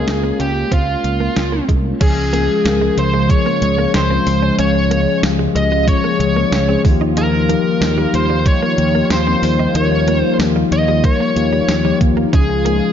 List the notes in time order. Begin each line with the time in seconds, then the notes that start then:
Already playing: G#3 A#3 C#4 F4 G#4 A#4
0.07 C#2, muted clean electric guitar stroke, snare, closed hi-hat
0.23 A#3
0.40 C#2 C#4 G4, closed hi-hat
0.72 C#2 C4 F4, kick, closed hi-hat
1.04 C#2, muted clean electric guitar stroke, closed hi-hat
1.20 A#3
1.36 C#2, muted clean electric guitar stroke, snare, closed hi-hat
1.52 A#3
1.68 C2 G#3, kick, closed hi-hat
2.01 C#2 C#3 F3 G#3 C#4 F4 G#4, kick, closed hi-hat, crash
2.17 muted clean electric guitar stroke
2.33 F3 G#3 A#3 C#4 G#4, closed hi-hat
2.65 C#2 F3 G#3 C#4 A#4, snare, closed hi-hat
2.81 G#3
2.97 C#2 C5, muted clean electric guitar stroke, closed hi-hat
3.14 G#3
3.29 F3 G#3 C#4 G#4 C#5, kick, closed hi-hat
3.46 A#3
3.62 C#2 F3 G#3 C#4 G#4, muted clean electric guitar stroke, closed hi-hat
3.78 A#3
3.94 C#2 C5, snare, closed hi-hat
4.10 F3 G#3 C4 C#4 F4
4.27 C#2, muted clean electric guitar stroke, open hi-hat
4.42 C#4
4.59 C#2 F3 G#3 C#4 G#4 C#5, closed hi-hat
4.75 muted clean electric guitar stroke
4.91 F3 G#3 A#3 C#4 G#4, closed hi-hat
5.23 C#2 F3 G#3 C#4 G4, snare, closed hi-hat, tambourine
5.31 G#4
5.39 G#3
5.55 C#2 D#5, muted clean electric guitar stroke, closed hi-hat
5.72 G#3
5.87 F3 G#3 C#4 G#4 C#5, kick, closed hi-hat
6.04 A#3
6.19 C#2 F3 G#3 C#4 G#4, muted clean electric guitar stroke, closed hi-hat
6.36 A#3
6.52 C#2, snare, closed hi-hat, tambourine
6.68 F3 G#3 C4 C#4 G#4
6.84 D#2 D#3 F3 G3 A#3 D#4 F4, muted clean electric guitar stroke, kick, open hi-hat
6.92 G4
7.01 D#4
7.17 D#4 A#4, closed hi-hat
7.33 muted clean electric guitar stroke
7.49 F3 A#3 D#4 G4, closed hi-hat
7.81 D#2 F3 A#3 D#4 G4, snare, closed hi-hat, tambourine
7.98 G3
8.14 D#2 C5, muted clean electric guitar stroke, closed hi-hat
8.30 G3
8.46 F3 A#3 D#4 G4 C#5, kick, closed hi-hat
8.62 A#3
8.78 D#2 F3 A#3 D#4 G4, muted clean electric guitar stroke, closed hi-hat
8.95 A#3
9.10 D#2 C5, snare, closed hi-hat, tambourine
9.26 F3 A#3 C4 D#4 G4
9.43 D#2, muted clean electric guitar stroke, open hi-hat
9.59 D#4
9.75 D#2 F3 A#3 D#4 A#4 C#5, closed hi-hat
9.92 muted clean electric guitar stroke
10.07 F3 A#3 D#4 F4, closed hi-hat
10.18 C5
10.39 D#2 F3 A#3 D#4 G4, snare, closed hi-hat, tambourine
10.56 G3
10.72 D#2 D#5, muted clean electric guitar stroke, closed hi-hat
10.88 G3
11.03 F3 A#3 D#4 A#4 C#5, kick, closed hi-hat
11.20 A#3
11.35 D#2 F3 A#3 D#4 G4, muted clean electric guitar stroke, closed hi-hat
11.53 G3
11.68 D#2, snare, closed hi-hat, tambourine
11.84 F3 G3 A#3 D#4 G4
12.01 D#2, muted clean electric guitar stroke, kick, closed hi-hat
12.17 A#3
12.32 C#2 C#3 F3 G#3 C#4 G#4, kick, closed hi-hat
12.49 muted clean electric guitar stroke
12.65 F3 G#3 A#3 C#4 D#4, closed hi-hat